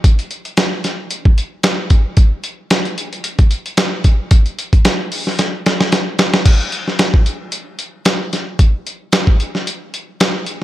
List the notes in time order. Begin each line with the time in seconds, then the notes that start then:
0.04 kick, closed hi-hat
0.19 closed hi-hat
0.31 closed hi-hat
0.45 closed hi-hat
0.57 snare, closed hi-hat
0.84 snare, closed hi-hat
1.11 closed hi-hat
1.25 kick
1.38 closed hi-hat
1.63 snare, closed hi-hat
1.90 kick, closed hi-hat
2.17 kick, closed hi-hat
2.44 closed hi-hat
2.70 snare, closed hi-hat
2.85 closed hi-hat
2.98 closed hi-hat
3.13 closed hi-hat
3.24 closed hi-hat
3.39 kick, closed hi-hat
3.51 closed hi-hat
3.66 closed hi-hat
3.77 snare, closed hi-hat
4.04 kick, closed hi-hat
4.31 kick, closed hi-hat
4.46 closed hi-hat
4.59 closed hi-hat
4.73 kick, closed hi-hat
4.85 snare, closed hi-hat
5.12 open hi-hat
5.27 snare
5.39 snare, closed hi-hat
5.66 snare, closed hi-hat
5.81 snare
5.92 snare, closed hi-hat
6.19 snare, closed hi-hat
6.34 snare
6.46 kick, closed hi-hat, crash
6.72 closed hi-hat
6.88 snare
6.99 snare, closed hi-hat
7.14 kick
7.26 closed hi-hat
7.52 closed hi-hat
7.79 closed hi-hat
8.05 snare, closed hi-hat
8.33 snare, closed hi-hat
8.59 kick, closed hi-hat
8.87 closed hi-hat
9.12 snare, closed hi-hat
9.27 kick
9.40 closed hi-hat
9.55 snare
9.67 closed hi-hat
9.94 closed hi-hat
10.20 snare, closed hi-hat
10.46 closed hi-hat